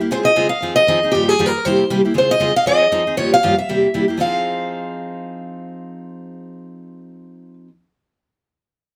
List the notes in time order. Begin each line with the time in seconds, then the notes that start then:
0.01 A#3 E4 G4
0.11 C#3 G#3 C4 F4 G#4 C5
0.25 D#5
0.36 C#3 G#3 C4 F4 G#4
0.49 F5
0.62 F3 C4 D#4 G#4
0.76 D#5
0.88 F3 C4 D#4 G#4
1.03 C4 D#4 G#4
1.12 G2 C#3 F3 A#3 F4 G4
1.29 G#4
1.39 G2 C#3 F3 A#3 F4 G4
1.46 A#4
1.65 C3 G3 A#3 E4 G4 C5
1.90 C3 G3 A#3 E4 G4
2.05 A#3 E4 G4
2.14 C#3 G#3 C4 F4 G#4
2.18 C5
2.31 D#5
2.40 C#3 G#3 C4 F4 G#4
2.56 F5
2.66 F3 C4 D#4 G#4 D#5
2.92 F3 C4 D#4 G#4
3.07 C4 D#4 G#4
3.17 G2 C#3 F3 A#3 F4 G4 C#5
3.34 F5
3.43 G2 C#3 F3 A#3 F4 G4
3.59 E5
3.69 C3 G3 A#3 E4 G4
3.94 C3 G3 A#3 E4 G4
4.08 A#3 E4 G4
4.17 F3 C4 D#4 G#4 F5